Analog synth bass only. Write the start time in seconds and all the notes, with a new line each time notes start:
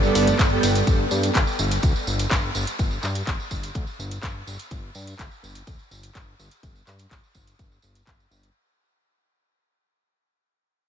Already playing: G1
0.15 G1
0.39 G1
0.63 G1
0.87 G1
1.11 G2
1.35 G1
1.59 G1
1.83 D2
2.07 G1
2.31 G1
2.55 G1
2.79 G1
3.03 G2
3.27 G1
3.51 G1
3.75 D2
3.99 G1
4.23 G1
4.47 G1
4.71 G1
4.95 G2
5.19 G1
5.43 G1
5.67 D2
5.91 G1
6.15 G1
6.39 G1
6.63 G1
6.87 G2
7.11 G1
7.35 G1
7.59 G1
7.83 G1
8.07 G1
8.31 G1